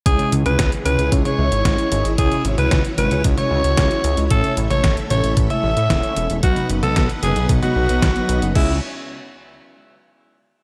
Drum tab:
CC |----------------|----------------|----------------|----------------|
HH |xxxxxxxxxx-xxxxx|xxxxxxxxxx-xxxxx|xxxxxxxxxx-xxxxx|xxxxxxxxxx-xxxxx|
SD |----o-------o---|----o-------o---|----o-------o---|----o-------o---|
T1 |-o-o--o--o------|-o-o--o--o------|-o-o--o--o------|-o-o--o--o------|
BD |o---o---o---o---|o---o---o---o---|o---o---o---o---|o---o---o---o---|

CC |x---------------|
HH |----------------|
SD |----------------|
T1 |----------------|
BD |o---------------|